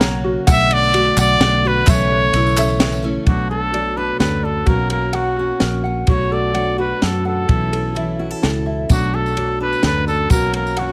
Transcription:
Already playing: fingered electric bass B1, tonewheel organ C#3 F#3 A#3, ukulele F#4 F#5, trumpet A#4
0.00 steel-string acoustic guitar F#3 A#3 C#4 F#4, ukulele C#5, snare, ride
0.24 ukulele F#4
0.47 fingered electric bass B1, steel-string acoustic guitar B2 F#3 A3 D4 F#4, tonewheel organ D3 A3, trumpet E5, ukulele F#5, kick, clap, ride, tambourine
0.70 ukulele D5, trumpet D5, ride
0.83 tambourine
0.94 steel-string acoustic guitar F#3 A3 D4 F#4, ukulele F#4, clap, ride
1.05 clap
1.17 fingered electric bass B1, trumpet D5, ukulele F#5, clap, tambourine
1.40 fingered electric bass B1, steel-string acoustic guitar F#3 A3 D4 F#4, ukulele D5, snare, ride
1.65 steel-string acoustic guitar A3 D4 F#4, ukulele F#4, trumpet B4
1.85 fingered electric bass B1, steel-string acoustic guitar B2 E3 A3 C#4 A4, tonewheel organ C#3 E3 A3, ukulele E5, kick, clap, ride, tambourine
1.90 trumpet C#5
2.12 ukulele C#5
2.33 fingered electric bass B1, steel-string acoustic guitar E3 A3 C#4 A4, ukulele E4, clap, ride, tambourine
2.47 tambourine
2.57 steel-string acoustic guitar A3 C#4 A4, ukulele E5, clap, tambourine
2.69 clap, tambourine
2.80 steel-string acoustic guitar E3 A3 C#4 A4, ukulele C#5, snare, ride
2.92 clap, tambourine
3.03 steel-string acoustic guitar A3 C#4 A4, ukulele E4
3.26 fingered electric bass B1, steel-string acoustic guitar B2 F#3 A3 D4, ukulele D4, trumpet F#4, kick, ride
3.50 steel-string acoustic guitar A3, trumpet A4, ukulele A4
3.74 steel-string acoustic guitar F#3 D4, ukulele D5, ride
3.97 ukulele D4, steel-string acoustic guitar A4, trumpet B4
4.20 fingered electric bass D2, steel-string acoustic guitar F#2, ukulele A4, trumpet B4, snare, ride
4.43 steel-string acoustic guitar D4, trumpet A4, ukulele D5
4.66 fingered electric bass B1, steel-string acoustic guitar B2 F#3 A#3 C#4, ukulele F#4, trumpet A#4, kick, ride
4.89 steel-string acoustic guitar A#3, ukulele A#4, trumpet A#4, ride
5.13 steel-string acoustic guitar F#3 C#4, trumpet F#4, ukulele F#5, ride
5.36 steel-string acoustic guitar C#4, ukulele F#4
5.60 fingered electric bass A#1, ukulele A#4, snare, ride
5.84 steel-string acoustic guitar C#4, ukulele F#5
6.07 fingered electric bass B1, steel-string acoustic guitar B2 F#3 A3 D4, ukulele F#4, trumpet C#5, kick, ride
6.11 steel-string acoustic guitar F#4
6.31 steel-string acoustic guitar A3, ukulele A4, trumpet D5
6.54 steel-string acoustic guitar F#3 D4, ukulele F#5, ride
6.78 steel-string acoustic guitar F#4, ukulele F#4, trumpet B4
7.02 fingered electric bass F#2, steel-string acoustic guitar B2, ukulele A4, trumpet A4, snare, ride
7.25 steel-string acoustic guitar D4, trumpet A4, ukulele F#5
7.48 fingered electric bass B1, steel-string acoustic guitar B2 E3 C#4 E4, ukulele E4, kick, ride
7.72 steel-string acoustic guitar C#4, ukulele A4, ride
7.95 steel-string acoustic guitar E3 E4, ukulele E5, ride
8.19 ukulele E4, steel-string acoustic guitar F#4
8.31 steel-string acoustic guitar A4
8.42 fingered electric bass C#2, steel-string acoustic guitar B2, ukulele A4, snare, ride
8.66 steel-string acoustic guitar E4, ukulele E5
8.89 fingered electric bass B1, steel-string acoustic guitar B2 F#3 A3 D4, ukulele D4, trumpet F#4, kick, ride, tambourine
9.14 steel-string acoustic guitar A3, ukulele A4, trumpet A4
9.26 tambourine
9.37 steel-string acoustic guitar F#3 D4, ukulele D5, ride
9.60 ukulele D4, steel-string acoustic guitar A4, trumpet B4
9.73 tambourine
9.83 fingered electric bass D2, steel-string acoustic guitar F#2, ukulele A4, trumpet B4, snare, ride
10.07 steel-string acoustic guitar D4, trumpet A4, ukulele D5, tambourine
10.30 fingered electric bass B1, steel-string acoustic guitar B2 F#3 A#3, ukulele F#4, trumpet A#4, kick, ride, tambourine
10.34 steel-string acoustic guitar C#4
10.53 steel-string acoustic guitar A#3, ukulele A#4, trumpet A#4, ride
10.67 tambourine
10.77 steel-string acoustic guitar F#3, trumpet F#4, ukulele F#5, ride
10.81 steel-string acoustic guitar C#4

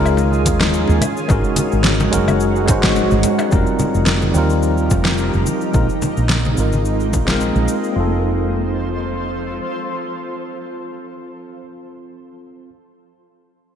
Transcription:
Already playing: fretless electric bass C#2, ambient pad D#3 C#4 F4 G#4, tine electric piano G#3 C#4 D#4 F4 A#4
0.06 cabasa, low woodblock
0.17 high bongo, cabasa
0.33 cabasa
0.46 fretless electric bass D#2, kick, closed hi-hat, low conga, cabasa
0.61 snare, high bongo, cabasa
0.74 cabasa
0.88 fretless electric bass D#2, high bongo, cabasa
1.01 ambient pad G#3 F#4, closed hi-hat, high conga, low conga, cabasa, low woodblock
1.17 cabasa
1.28 fretless electric bass G#1, tine electric piano G#3 C#4 D#4 F#4 A#4, kick, high bongo, cabasa
1.44 cabasa
1.56 closed hi-hat, high bongo, high conga, low conga, cabasa
1.72 fretless electric bass G#1, cabasa
1.84 snare, cabasa
2.00 high bongo, high conga, cabasa
2.11 fretless electric bass F#1, tine electric piano G#3 C#4 D#4 F#4 A#4, kick, closed hi-hat, cabasa
2.28 high bongo, high conga, cabasa, low woodblock
2.40 cabasa
2.56 cabasa
2.65 fretless electric bass G#1, tine electric piano G#3 C#4 D#4, kick, closed hi-hat, high bongo, low conga, cabasa
2.70 tine electric piano F#4 C5
2.83 kick, snare, cabasa
2.96 high bongo, cabasa
3.11 fretless electric bass G#1, cabasa
3.23 closed hi-hat, low conga, cabasa
3.39 high bongo, cabasa, low woodblock
3.49 fretless electric bass F1, ambient pad F3 D#4 G4 A#4, tine electric piano G3 C4 D#4, kick, cabasa
3.54 tine electric piano F4 A#4
3.67 cabasa
3.79 high conga, low conga, cabasa
3.95 fretless electric bass F1, cabasa
4.06 snare, cabasa
4.22 high conga, cabasa
4.32 fretless electric bass D#2, tine electric piano G3 C4 D#4, cabasa
4.37 tine electric piano F4 A#4
4.50 cabasa
4.63 cabasa
4.78 cabasa
4.90 fretless electric bass F1, kick, low conga, cabasa
5.05 snare, cabasa
5.18 cabasa
5.33 fretless electric bass F1, cabasa
5.46 high conga, cabasa
5.61 cabasa
5.73 fretless electric bass A#1, tine electric piano G#3 C4 D#4 F4 A#4, ambient pad G#3 A#3, kick, cabasa
5.89 cabasa
6.02 high conga, low conga, cabasa
6.17 fretless electric bass A#1, cabasa
6.29 snare, cabasa
6.45 high conga, cabasa
6.54 fretless electric bass G#1, tine electric piano G#3 C4 D#4, cabasa
6.58 tine electric piano F4 A#4
6.72 high conga, cabasa
6.85 cabasa
7.00 cabasa
7.13 fretless electric bass A#1, kick, low conga, cabasa
7.25 tine electric piano G#3 C4 D#4, snare, cabasa
7.30 tine electric piano F4 A#4
7.40 cabasa
7.56 fretless electric bass A#1, cabasa
7.68 cabasa
7.84 cabasa
7.92 tine electric piano C4
7.96 fretless electric bass F1, ambient pad F3 F4 A4 C5, tine electric piano F4
8.00 tine electric piano A4

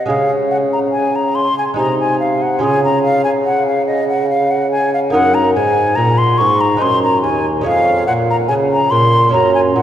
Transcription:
0.06 bassoon C#3, lute G#3 C#4 G#4, flute F5
0.10 lute C#3
0.51 flute F#5
0.73 flute A#5
0.92 flute G#5
1.15 flute A#5
1.35 flute C6
1.58 flute G#5
1.74 lute G#3 D#4 G#4, flute A#5
1.78 bassoon C3, lute C3
2.00 flute G#5
2.20 flute F5
2.42 flute F#5
2.59 bassoon C#3, lute C#4 F4 G#4, flute G#5
2.63 lute C#3
2.84 flute A#5
3.03 flute F5
3.24 flute G#5
3.45 flute F#5
3.67 flute F5
3.87 flute D#5
4.08 flute F#5
4.29 flute F5
4.51 flute F#5
4.71 flute G#5
4.94 flute F5
5.10 lute A#3 D#4 A#4, flute F#5
5.15 lute F#2, bassoon F#2
5.34 flute A#5
5.54 bassoon G#2, lute G#2, flute G#5
5.96 lute A#2, bassoon A#2, flute A#5
6.18 flute C6
6.38 bassoon G#2, lute G#2, flute C#6
6.61 flute A#5
6.77 lute G#3 D#4 C5
6.82 bassoon F#2, lute F#2, flute C6
7.03 flute A#5
7.22 bassoon D#2, lute D#2, flute G#5
7.61 lute G#3 C#4 C#5, flute F5
7.66 bassoon F2, lute F2
8.07 lute A#2, bassoon A#2, flute F#5
8.30 flute A#5
8.48 bassoon C#3, lute C#3, flute G#5
8.71 flute A#5
8.91 lute A#2, bassoon A#2, flute C6
9.29 lute A#3 C#4 C#5, flute A#5
9.34 bassoon F#2, lute F#2
9.55 flute G#5
9.75 bassoon A#2, lute A#2, flute F#5

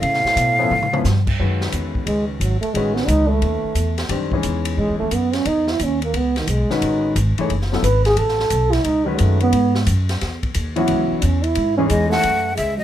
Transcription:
0.00 trombone A2, upright bass C#3, flute F5, ride
0.14 snare
0.24 muted upright bass stroke, snare
0.36 upright bass B2, hi-hat pedal, ride
0.59 grand piano F3 B3 C#4 E4 A4
0.71 upright bass A2, mid tom
0.82 mid tom
0.93 grand piano F3 B3 C#4 E4 B4, mid tom
1.05 upright bass G2, snare, hi-hat pedal
1.27 kick, crash
1.39 upright bass F#2, grand piano D#3 G#3 C#4 F#4 B4
1.61 snare
1.72 upright bass E2, hi-hat pedal, ride
1.95 kick
2.06 upright bass C#2, trombone G#3, ride
2.28 trombone C#3
2.40 upright bass G#1, trombone F#3, hi-hat pedal, ride
2.61 trombone A3, ride
2.74 upright bass A1, grand piano D#3 C#4 F#4 G#4 B4, trombone G#3, ride
2.94 trombone B3, snare
3.06 upright bass C#2, trombone D#4, hi-hat pedal, ride
3.28 trombone A3
3.42 upright bass D#2, ride
3.64 muted upright bass stroke
3.75 upright bass E2, hi-hat pedal, ride
3.98 snare, ride
4.09 upright bass F#2, grand piano D#3 G3 C4 D4 G4, ride
4.32 grand piano E3 G#3 C#4 D#4 G#4, kick
4.43 upright bass E2, hi-hat pedal, ride
4.65 ride
4.77 upright bass G#2, trombone G#3
4.89 upright bass E2
4.99 upright bass D#2, trombone A3
5.11 upright bass F#2, trombone B3, hi-hat pedal, ride
5.33 trombone C#4, snare, ride
5.45 upright bass E2, trombone D#4, ride
5.67 trombone E4, snare
5.79 upright bass D#2, hi-hat pedal, ride
5.84 trombone C#4
6.02 trombone A#3, ride
6.13 upright bass C#2, trombone B3, ride
6.36 trombone D#3, snare, ride
6.47 upright bass B1, trombone G#3, hi-hat pedal, ride
6.70 grand piano D#3 G#3 C#4 F#4 B4, trombone D#4, snare
6.81 upright bass A1, ride
7.16 upright bass G#1, hi-hat pedal, ride
7.38 grand piano E3 A3 D#4 G#4 C#5, muted upright bass stroke, ride
7.49 upright bass F#1, ride
7.62 snare
7.72 grand piano C#3 F#3 B3 E4 A4, snare
7.83 upright bass G#1, trombone B4, hi-hat pedal, ride
8.05 trombone G#4, snare, ride
8.17 upright bass A1, trombone A4, ride
8.28 snare
8.40 snare
8.50 upright bass B1, hi-hat pedal, ride
8.72 trombone E4, snare, ride
8.84 upright bass C#2, trombone D#4, ride
9.06 grand piano D#3 G#3 C#4 F#4 B4, trombone F#3
9.19 upright bass F#2, trombone A3, hi-hat pedal, ride
9.40 trombone B3, ride
9.53 upright bass G#2, ride
9.75 snare
9.87 upright bass F#2, hi-hat pedal, ride
10.09 snare, ride
10.21 upright bass E2, snare, ride
10.43 kick, ride
10.54 upright bass D#2, hi-hat pedal, ride
10.76 grand piano E3 F#3 B3 C#4 F#4, trombone E4, ride
10.88 upright bass C#2, ride
11.11 muted upright bass stroke
11.22 upright bass E2, trombone C#4, hi-hat pedal, ride
11.43 trombone E4, ride
11.55 upright bass G#2, ride
11.78 grand piano E3 G#3 C#4 D#4 G#4, trombone C#4
11.89 upright bass E2, trombone G#3, flute D#5, hi-hat pedal, ride
12.10 trombone A3, flute F#5, snare
12.23 upright bass F#2, ride
12.55 upright bass C#2, trombone G#3, flute E5, hi-hat pedal, ride
12.78 trombone F#3, flute D#5

